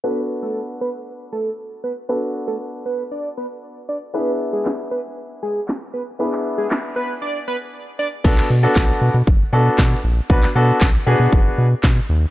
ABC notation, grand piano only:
X:1
M:4/4
L:1/16
Q:1/4=117
K:Bdor
V:1 name="Grand piano"
[B,DFA]16 | [B,DFA]16 | [B,DEG]16 | [B,DEG]16 |
[B,DFA]2 z [B,DFA]4 z3 [B,DFA]3 z3 | [B,DFB] z [B,DFA]2 z2 [B,DFG]4- [B,DFG] z4 z |]